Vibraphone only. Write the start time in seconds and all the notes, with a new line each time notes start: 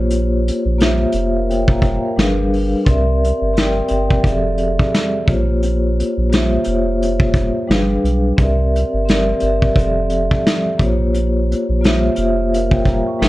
Already playing: A#3 F4 G4 C5 C#5
0.78 A#3 F4 G4 C5
0.83 E5
1.35 A#4 F5
1.50 C#5 G5
1.70 F5 A#5
1.84 C#5 G5
2.05 A#4 F5
2.16 G3 D4 G#4 B4
2.21 F5
2.85 C4 G4 A#4 D5
2.90 E5
3.54 C4 G4 A#4 D5
3.59 G5
3.89 C4 G4 A#4 D5
3.93 G5
4.23 F3 C4 G4 G#4 D5
4.28 E5
4.32 A4
5.26 A#3 F4 G4 C5
5.31 C#5
6.30 A#3 F4 G4 C5
6.34 E5
6.63 A#3 F4 G4 C5
6.69 C#5
7.68 G3 D4 G#4 B4
7.72 F5
8.37 C4 G4 A#4 D5
8.41 E5
9.05 C4 G4 A#4 D5
9.10 E5
9.40 C4 G4 A#4 D5
9.45 E5
9.75 F3 C4 G4 A4 D5
9.80 E5
10.78 A#3 F4 G4 C5
10.83 C#5
11.81 A#3 F4 G4 C5
11.86 E5
12.15 A#3 F4 G4 C5
12.20 E5
12.53 A#4 F5
12.73 C#5 G5
13.07 G5 C#6
13.19 G3 D4 G#4 B4
13.24 E5